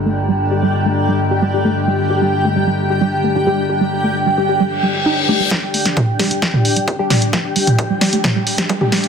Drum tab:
HH |----------------|----------------|----------------|x-oxx-oxx-oxx-ox|
SD |----------------|----------------|----------------|o--o--o-o-----o-|
T2 |----------------|----------------|----------------|----o----o----o-|
BD |----------------|----------------|----------------|o---o---o---o---|

HH |x-oxx-oxx-oxx-ox|
SD |o-----o-o--o--o-|
T2 |---o----o----o--|
BD |o---o---o---o---|